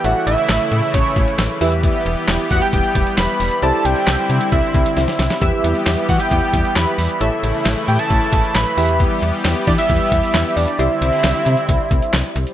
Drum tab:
HH |x-xxx-xxx-xxx-ox|x-xxx-xxx-xxx-ox|x-xxx-xxx-xxx-xx|x-xxx-xxx-xxx-ox|
CP |----x-------x---|----x-------x---|----x-----------|----x-------x---|
SD |----o-------o---|----o-------o---|----o-------oooo|----o-------o---|
BD |--------o-o-----|o-----o-o-o-----|--------o-o-----|o-----o-o-o-----|

HH |x-xxx-xxx-xxx-ox|x-xxx-xxx-xxx-ox|x-xxx-xxx-xxx-xx|
CP |----x-------x---|----x-------x---|----x-------x---|
SD |----o-------o---|----o-------o---|----o-------o---|
BD |--------o-o-----|o-----o-o-o-----|--------o-o-----|